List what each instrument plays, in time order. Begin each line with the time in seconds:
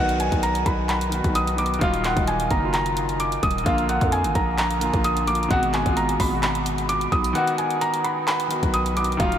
Already playing: 808-style bass B1, grand piano D#3 B3, felt piano F#5
0.00 grand piano F#4
0.09 closed hi-hat
0.20 felt piano G#5, closed hi-hat
0.32 808-style bass B1, kick, closed hi-hat
0.43 felt piano A#5, closed hi-hat
0.55 closed hi-hat
0.66 808-style bass B1, felt piano B5, kick, closed hi-hat
0.89 felt piano B5, clap, closed hi-hat
1.01 closed hi-hat
1.10 grand piano D#3 B3, closed hi-hat
1.14 grand piano F#4
1.24 808-style bass B1, kick, closed hi-hat
1.35 felt piano D#6, closed hi-hat
1.47 closed hi-hat
1.56 grand piano D#3 B3, felt piano D6, closed hi-hat
1.60 grand piano F#4
1.66 closed hi-hat
1.74 closed hi-hat
1.79 808-style bass D#1, grand piano D#3 F#3, felt piano F5, kick, closed hi-hat
1.84 grand piano F4
1.94 closed hi-hat
2.04 felt piano F#5, clap, closed hi-hat
2.14 808-style bass D#1, grand piano D#3 F#3, kick, closed hi-hat
2.19 grand piano D#4
2.28 felt piano G#5, closed hi-hat
2.40 closed hi-hat
2.51 808-style bass F#1, felt piano A#5, kick, closed hi-hat
2.60 grand piano D#3 F#3
2.65 grand piano F4
2.74 felt piano A#5, clap, closed hi-hat
2.86 closed hi-hat
2.97 closed hi-hat
3.09 closed hi-hat
3.20 felt piano D6, closed hi-hat
3.32 closed hi-hat
3.43 808-style bass D#1, felt piano D#6, kick, closed hi-hat
3.51 closed hi-hat
3.58 closed hi-hat
3.63 808-style bass A#1, grand piano D3 A#3, felt piano F5, kick, closed hi-hat
3.68 grand piano F4
3.78 closed hi-hat
3.89 felt piano F#5, closed hi-hat
4.01 808-style bass F2, kick, closed hi-hat
4.12 felt piano G#5, closed hi-hat
4.24 808-style bass G#1, closed hi-hat
4.35 808-style bass A#1, felt piano A#5, kick, closed hi-hat
4.58 felt piano A#5, clap, closed hi-hat
4.71 closed hi-hat
4.79 grand piano D3 A#3, closed hi-hat
4.83 grand piano F4
4.94 808-style bass A#1, kick, closed hi-hat
5.04 felt piano D#6, closed hi-hat
5.17 closed hi-hat
5.25 grand piano D3 A#3, felt piano D6, closed hi-hat
5.30 grand piano F4
5.35 closed hi-hat
5.43 closed hi-hat
5.48 808-style bass G#1, grand piano B2 G#3, felt piano F#5, kick, closed hi-hat
5.53 grand piano F#4
5.63 closed hi-hat
5.74 felt piano G#5, clap, closed hi-hat
5.84 808-style bass G#1, grand piano B2 G#3, kick, closed hi-hat
5.89 grand piano F4
5.97 felt piano A#5, closed hi-hat
6.09 closed hi-hat
6.20 808-style bass G#1, felt piano B5, kick, open hi-hat
6.30 grand piano B2 G#3
6.35 grand piano F#4
6.43 felt piano B5, clap, closed hi-hat
6.55 closed hi-hat
6.66 closed hi-hat
6.78 closed hi-hat
6.89 felt piano D6, closed hi-hat
7.01 closed hi-hat
7.12 808-style bass B1, felt piano D#6, kick, closed hi-hat
7.24 closed hi-hat
7.33 grand piano D#3 B3, felt piano F#5, closed hi-hat
7.38 grand piano F#4
7.47 closed hi-hat
7.58 felt piano G#5, closed hi-hat
7.71 closed hi-hat
7.81 felt piano A#5, closed hi-hat
7.94 closed hi-hat
8.04 felt piano B5, closed hi-hat
8.27 felt piano B5, clap, closed hi-hat
8.40 closed hi-hat
8.48 grand piano D#3 B3, closed hi-hat
8.53 grand piano F#4
8.63 808-style bass B1, kick, closed hi-hat
8.74 felt piano D#6, closed hi-hat
8.86 closed hi-hat
8.94 grand piano D#3 B3, felt piano D6, closed hi-hat
8.99 grand piano F#4
9.04 closed hi-hat
9.12 closed hi-hat
9.17 808-style bass D#1, grand piano D#3 F#3, felt piano F5, kick, closed hi-hat
9.22 grand piano F4
9.32 closed hi-hat